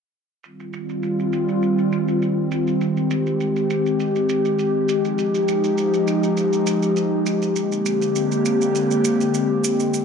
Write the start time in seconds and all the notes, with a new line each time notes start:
0.44 D#3 G3 C4 F4, shaker
0.60 shaker
0.73 shaker
0.89 shaker
1.03 shaker
1.19 shaker
1.33 shaker
1.49 shaker
1.62 shaker
1.79 shaker
1.92 shaker
2.08 shaker
2.22 shaker
2.51 shaker
2.67 shaker
2.81 G#3 G4, shaker
2.97 shaker
3.11 shaker
3.27 shaker
3.40 shaker
3.56 shaker
3.70 shaker
3.86 shaker
4.00 shaker
4.16 shaker
4.29 shaker
4.45 shaker
4.59 shaker
4.89 F3 D#4, shaker
5.05 shaker
5.18 shaker
5.35 shaker
5.48 shaker
5.64 shaker
5.78 shaker
5.94 shaker
6.07 shaker
6.23 shaker
6.37 shaker
6.53 shaker
6.67 shaker
6.83 shaker
6.96 shaker
7.26 shaker
7.42 shaker
7.56 D3 A#3 C4 G4, shaker
7.72 shaker
7.86 shaker
8.02 shaker
8.16 shaker
8.32 shaker
8.45 shaker
8.61 shaker
8.75 shaker
8.91 shaker
9.05 shaker
9.21 shaker
9.34 shaker
9.64 shaker
9.80 shaker
9.93 D#3 G3 F4, shaker